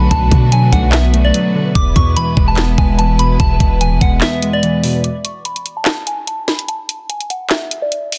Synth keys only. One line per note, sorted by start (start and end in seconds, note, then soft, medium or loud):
0.00 0.11 B2 medium
0.00 0.32 D3 medium
0.00 0.52 F#3 medium
0.00 0.73 A3 medium
0.00 0.32 B3 medium
0.11 1.14 B2 loud
0.32 1.34 D3 medium
0.52 1.33 F#3 medium
0.73 1.13 A3 medium
0.93 1.75 B3 loud
1.14 1.75 A3 medium
1.34 1.75 F#3 medium
1.55 1.75 D3 medium
1.75 2.78 E2 loud
1.96 2.99 B2 medium
2.17 2.97 E3 medium
2.37 2.77 G#3 medium
2.58 3.60 B3 loud
2.78 3.81 G#3 medium
2.99 3.80 E3 medium
3.19 3.59 B2 medium
3.40 4.42 E2 medium
3.60 4.63 B2 medium
3.81 4.62 E3 medium
4.01 4.41 G#3 medium
4.22 5.04 B3 loud
4.42 5.04 G#3 medium
4.63 5.04 E3 medium
4.84 5.04 B2 medium